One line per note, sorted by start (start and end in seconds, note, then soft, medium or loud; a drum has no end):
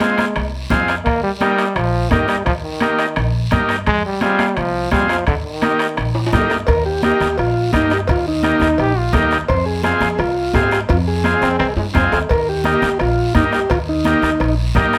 0.00 0.48 G#3 medium
0.00 0.25 C4 medium
0.00 0.25 F4 medium
0.00 0.26 G#4 medium
0.00 bombo rim medium
0.00 high conga medium
0.00 high timbale medium
0.00 short guiro medium
0.18 bombo rim medium
0.18 high conga medium
0.18 high timbale medium
0.18 short guiro medium
0.36 0.64 C2 medium
0.36 bombo rim medium
0.36 high timbale medium
0.36 long guiro medium
0.70 0.99 F2 medium
0.70 0.95 C4 medium
0.70 0.95 F4 medium
0.70 0.96 G#4 medium
0.70 bombo low medium
0.70 bombo rim medium
0.70 high conga medium
0.70 low conga medium
0.70 high timbale medium
0.70 short guiro medium
0.88 bombo rim medium
0.88 high timbale medium
0.88 short guiro medium
1.04 1.20 D#2 loud
1.04 1.21 A#3 loud
1.04 bombo low medium
1.04 bombo rim medium
1.04 high timbale medium
1.04 long guiro medium
1.23 1.31 G3 medium
1.39 1.77 G3 loud
1.39 1.66 A#3 medium
1.39 1.66 D#4 medium
1.39 1.66 G4 medium
1.39 bombo rim medium
1.39 high conga medium
1.39 high timbale medium
1.39 short guiro medium
1.58 bombo rim medium
1.58 high timbale medium
1.58 short guiro medium
1.76 2.04 A#1 medium
1.76 2.11 F3 medium
1.76 bombo rim medium
1.76 high timbale medium
1.76 long guiro medium
2.10 2.40 G2 medium
2.10 2.29 D#3 medium
2.10 2.36 A#3 medium
2.10 2.36 D#4 medium
2.10 2.36 G4 medium
2.10 bombo low medium
2.10 bombo rim medium
2.10 high conga medium
2.10 high timbale medium
2.10 low timbale medium
2.10 short guiro medium
2.27 2.44 G3 medium
2.27 bombo rim medium
2.27 high timbale medium
2.27 short guiro medium
2.45 2.60 D#2 loud
2.45 2.53 F3 medium
2.45 bombo low medium
2.45 bombo rim medium
2.45 high timbale medium
2.45 long guiro medium
2.64 3.30 D#3 medium
2.80 3.06 A#3 medium
2.80 3.06 D#4 medium
2.80 3.06 G4 medium
2.80 bombo rim medium
2.80 high conga medium
2.80 high timbale medium
2.80 short guiro medium
2.99 bombo rim medium
2.99 high timbale medium
2.99 short guiro medium
3.16 3.45 A#1 medium
3.16 bombo rim medium
3.16 high timbale medium
3.16 long guiro medium
3.51 3.80 G2 medium
3.51 3.76 A#3 medium
3.51 3.77 D#4 medium
3.51 3.77 G4 medium
3.51 bombo low medium
3.51 bombo rim medium
3.51 high conga medium
3.51 low conga medium
3.51 high timbale medium
3.51 short guiro medium
3.69 bombo rim medium
3.69 high timbale medium
3.69 short guiro medium
3.87 4.01 F2 loud
3.87 4.03 G#3 loud
3.87 bombo low medium
3.87 bombo rim medium
3.87 high timbale medium
3.87 long guiro medium
4.06 4.21 G3 medium
4.21 4.59 G3 loud
4.21 4.46 C4 medium
4.21 4.47 F4 medium
4.21 4.47 G#4 medium
4.21 bombo rim medium
4.21 high conga medium
4.21 high timbale medium
4.21 short guiro medium
4.39 bombo rim medium
4.39 high conga medium
4.39 high timbale medium
4.39 short guiro medium
4.57 4.85 C2 medium
4.57 4.92 F3 medium
4.57 bombo rim medium
4.57 high timbale medium
4.57 long guiro medium
4.91 5.20 F2 medium
4.91 5.09 G3 medium
4.91 5.17 C4 medium
4.91 5.17 F4 medium
4.91 5.17 G#4 medium
4.91 bombo low medium
4.91 bombo rim medium
4.91 high conga medium
4.91 high timbale medium
4.91 short guiro medium
5.09 5.26 F3 medium
5.09 bombo rim medium
5.09 high timbale medium
5.09 short guiro medium
5.27 5.42 D#2 loud
5.27 5.35 D3 medium
5.27 bombo low medium
5.27 bombo rim medium
5.27 high timbale medium
5.27 long guiro medium
5.44 6.11 D#3 medium
5.62 5.87 A#3 medium
5.62 5.87 D#4 medium
5.62 5.87 G4 medium
5.62 bombo rim medium
5.62 high conga medium
5.62 high timbale medium
5.62 short guiro medium
5.79 bombo rim medium
5.79 high timbale medium
5.79 short guiro medium
5.97 6.26 A#1 medium
5.97 bombo rim medium
5.97 high timbale medium
5.97 long guiro medium
6.15 high timbale medium
6.27 high timbale medium
6.32 6.61 G2 medium
6.32 6.57 A#3 medium
6.32 6.57 D#4 medium
6.32 6.58 G4 medium
6.32 bombo low medium
6.32 bombo rim medium
6.32 high conga medium
6.32 low conga medium
6.32 short guiro medium
6.38 low timbale medium
6.50 bombo rim medium
6.50 low timbale medium
6.50 short guiro medium
6.67 7.10 D#2 loud
6.67 6.84 A#4 loud
6.67 bombo low medium
6.67 bombo rim medium
6.67 cowbell loud
6.67 long guiro medium
6.86 7.02 G4 medium
7.03 7.28 A#3 medium
7.03 7.28 D#4 medium
7.03 7.28 G4 medium
7.03 7.37 G4 loud
7.03 bombo rim medium
7.03 high conga medium
7.03 short guiro medium
7.21 7.35 D#2 medium
7.21 bombo rim medium
7.21 short guiro medium
7.38 7.66 A#1 medium
7.38 7.71 F4 medium
7.38 bombo rim medium
7.38 cowbell medium
7.38 long guiro medium
7.73 8.01 G2 medium
7.73 7.97 A#3 medium
7.73 7.98 D#4 medium
7.73 7.93 D#4 medium
7.73 7.98 G4 medium
7.73 bombo low medium
7.73 bombo rim medium
7.73 high conga medium
7.73 short guiro medium
7.90 8.01 G4 medium
7.90 bombo rim medium
7.90 short guiro medium
8.07 8.51 D#2 loud
8.07 8.26 F4 medium
8.07 bombo low medium
8.07 bombo rim medium
8.07 cowbell loud
8.07 long guiro medium
8.28 8.93 D#4 medium
8.43 8.68 A#3 medium
8.43 8.68 D#4 medium
8.43 8.68 G4 medium
8.43 bombo rim medium
8.43 high conga medium
8.43 short guiro medium
8.60 8.75 D#2 medium
8.60 8.81 D#4 medium
8.60 bombo rim medium
8.60 high conga medium
8.60 short guiro medium
8.78 9.07 A#1 medium
8.78 8.99 G4 loud
8.78 bombo rim medium
8.78 cowbell medium
8.78 long guiro medium
8.98 9.14 F4 medium
9.13 9.42 D#2 medium
9.13 9.38 A#3 medium
9.13 9.38 D#4 medium
9.13 9.39 D#4 medium
9.13 9.38 G4 loud
9.13 bombo low medium
9.13 bombo rim medium
9.13 high conga medium
9.13 low conga medium
9.13 low timbale medium
9.13 short guiro medium
9.31 bombo rim medium
9.31 short guiro medium
9.48 9.91 F2 loud
9.48 9.65 C5 loud
9.48 bombo low medium
9.48 bombo rim medium
9.48 cowbell loud
9.48 long guiro medium
9.66 9.82 G#4 medium
9.83 10.08 C4 medium
9.83 10.09 F4 medium
9.83 10.20 G#4 medium
9.83 10.09 G#4 medium
9.83 bombo rim medium
9.83 high conga medium
9.83 short guiro medium
10.01 10.15 F2 medium
10.01 bombo rim medium
10.01 high conga medium
10.01 short guiro medium
10.18 10.47 C2 medium
10.18 10.55 F4 loud
10.18 bombo rim medium
10.18 cowbell medium
10.18 long guiro medium
10.54 10.83 G#2 medium
10.54 10.79 C4 medium
10.54 10.79 F4 medium
10.54 10.71 G4 medium
10.54 10.79 G#4 medium
10.54 bombo low medium
10.54 bombo rim medium
10.54 high conga medium
10.54 low timbale medium
10.54 short guiro medium
10.71 10.80 G4 medium
10.71 bombo rim medium
10.71 short guiro medium
10.89 11.32 F2 loud
10.89 10.98 F4 medium
10.89 bombo low medium
10.89 bombo rim medium
10.89 cowbell loud
10.89 long guiro medium
11.08 11.73 G#4 medium
11.24 11.49 C4 medium
11.24 11.49 F4 medium
11.24 11.49 G#4 medium
11.24 bombo rim medium
11.24 high conga medium
11.24 short guiro medium
11.41 11.56 F2 medium
11.41 11.58 C4 loud
11.41 bombo rim medium
11.41 short guiro medium
11.59 11.74 C2 medium
11.59 11.67 C4 loud
11.59 bombo rim medium
11.59 cowbell medium
11.59 long guiro medium
11.76 11.93 G2 medium
11.76 11.85 G#3 medium
11.76 high timbale medium
11.94 12.11 F2 medium
11.94 12.19 C4 medium
11.94 12.19 F4 medium
11.94 12.19 G#4 medium
11.94 bombo low medium
11.94 bombo rim medium
11.94 high conga medium
11.94 low conga medium
11.94 short guiro medium
12.12 12.28 D#2 medium
12.12 bombo rim medium
12.12 low timbale medium
12.12 short guiro medium
12.29 12.72 D#2 loud
12.29 12.48 A#4 loud
12.29 bombo low medium
12.29 bombo rim medium
12.29 cowbell loud
12.29 long guiro medium
12.49 12.65 G4 medium
12.64 12.89 A#3 medium
12.64 12.90 D#4 medium
12.64 12.90 G4 medium
12.64 12.98 G4 medium
12.64 bombo rim medium
12.64 high conga medium
12.64 short guiro medium
12.82 12.96 D#2 medium
12.82 bombo rim medium
12.82 high conga medium
12.82 short guiro medium
12.99 13.28 A#1 medium
12.99 13.33 F4 loud
12.99 bombo rim medium
12.99 cowbell medium
12.99 long guiro medium
13.35 13.63 G2 medium
13.35 13.60 A#3 medium
13.35 13.60 D#4 medium
13.35 13.44 D#4 medium
13.35 13.60 G4 medium
13.35 bombo low medium
13.35 bombo rim medium
13.35 high conga medium
13.35 short guiro medium
13.52 13.70 G4 medium
13.52 bombo rim medium
13.52 short guiro medium
13.70 14.13 D#2 loud
13.70 13.79 F4 medium
13.70 bombo low medium
13.70 bombo rim medium
13.70 cowbell loud
13.70 long guiro medium
13.89 14.55 D#4 medium
14.04 14.30 A#3 medium
14.04 14.30 D#4 medium
14.04 14.30 G4 medium
14.04 bombo rim medium
14.04 high conga medium
14.04 short guiro medium
14.22 14.37 D#2 medium
14.22 bombo rim medium
14.22 short guiro medium
14.40 14.69 A#1 medium
14.40 bombo rim medium
14.40 cowbell medium
14.40 long guiro medium
14.75 14.98 G2 loud
14.75 14.98 A#3 medium
14.75 14.98 D#4 medium
14.75 14.98 G4 loud
14.75 bombo low medium
14.75 bombo rim medium
14.75 high conga medium
14.75 low conga medium
14.75 short guiro medium
14.93 bombo rim medium
14.93 short guiro medium